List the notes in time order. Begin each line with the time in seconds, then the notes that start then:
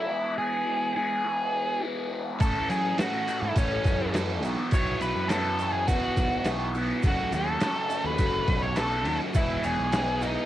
Already playing: E4
0.08 E3 G#3 B3 E4
0.38 G#4
0.66 E3 G#3 B3 E4
0.95 E3 G#3 B3 E4 G#4
1.24 E3 G#3 B3 E4
1.82 E3 G#3 B3 E4
2.11 E3 G#3 B3 E4
2.39 A2 E3 A3 C#4 E4 A4, kick, crash, shaker
2.69 F#3 G#4, crash, shaker
2.98 A2 E3 A3 C#4 E4 F#4 A4, snare, crash, shaker
3.27 A2 E3 A3 C#4 E4 A4, crash, shaker
3.42 G#2 E4
3.56 A2 E3 A3 C#4 E4 A4, kick, crash, shaker
3.84 F#2, kick, snare, crash, shaker
4.14 A2 E3 A3 C#4 E4 A4, snare, crash, shaker
4.42 B1 B2 E3 B3 E4 F#4, crash, shaker
4.71 B1 B2 E3 B3 E4 F#4 C#5, kick, crash, shaker
5.01 B1 B4, crash, shaker
5.15 F#2
5.29 B2 E3 B3 E4 F#4 A4, snare, crash, shaker
5.59 B2 E3 B3 E4 F#4, crash, shaker
5.73 G#4
5.87 B2 E3 B3 E4 F#4, kick, crash, shaker
6.17 B1, kick, crash, shaker
6.44 B1 B2 E3 B3 E4 F#4, snare, crash, shaker
6.74 B2 E3 B3 E4 F#4, crash, shaker
7.03 F#1 F#2 C#3 F#3 A3 C#4 F#4, kick, crash, shaker
7.07 F#4
7.32 D#2 A4, crash, shaker
7.60 F#2 C#3 F#3 A3 C#4 F#4, snare, crash, shaker
7.89 F#2 C#3 F#3 A3 C#4 F#4, crash, shaker
8.04 D#2 B4
8.17 F#1 F#2 C#3 F#3 A3 C#4 F#4, kick, crash, shaker
8.48 B1, kick, crash
8.62 C#5
8.76 F#2 C#3 F#3 A3 C#4 F#4 A4, snare, crash, shaker
9.04 D#2 F#2 C#3 F#3 A3 C#4 F#4, crash
9.33 E1 E2 B2 E3 G#3 B3 E4, kick, crash, shaker
9.38 G#4
9.64 E1 G#4, crash, shaker
9.79 B1
9.92 E2 B2 E3 G#3 B3 E4, snare, crash, shaker
9.96 G#4
10.22 E2 B2 E3 G#3 B3 D#4 E4 G#4, crash, shaker